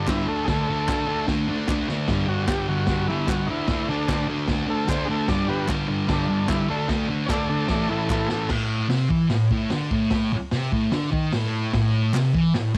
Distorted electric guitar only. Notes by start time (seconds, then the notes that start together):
Already playing: D4
0.08 G2 D3 G3
0.28 D3 A3 D4
0.48 D3 A3 D4
0.67 D3 A3 D4
0.87 D3 A3 D4
1.07 D3 A3 D4
1.28 D3 A3 D4
1.48 D3 A3 D4
1.69 D3 A3 D4
1.88 D3 A3 D4
2.08 G2 D3 G3
2.27 G2 D3 G3
2.47 G2 D3 G3
2.68 G2 D3 G3
2.88 G2 D3 G3
3.08 G2 D3 G3
3.29 G2 D3 G3
3.48 D3 A3 D4
3.68 D3 A3 D4
3.88 D3 A3 D4
4.08 D3 A3 D4
4.28 D3 A3 D4
4.48 D3 A3 D4
4.67 D3 A3 D4
4.89 D3 A3 D4
5.09 D3 A3 D4
5.29 G2 D3 G3
5.48 G2 D3 G3
5.68 G2 D3 G3
5.88 G2 D3 G3
6.07 G2 D3 G3
6.28 G2 D3 G3
6.48 G2 D3 G3
6.69 D3 A3 D4
6.88 D3 A3 D4
7.09 D3 A3 D4
7.27 D3 A3 D4
7.49 D3 A3 D4
7.68 A2 E3 A3
7.88 A2 E3 A3
8.08 A2 E3 A3
8.29 A2 E3 A3
8.50 A2
8.90 C3
9.10 E3
9.31 A2
9.52 A2
9.72 D3
9.92 A2
10.33 muted distorted electric guitar stroke
10.53 C3
10.73 A2
10.93 D3
11.12 D#3
11.34 A2
11.74 A2
12.14 C3
12.34 E3
12.55 A2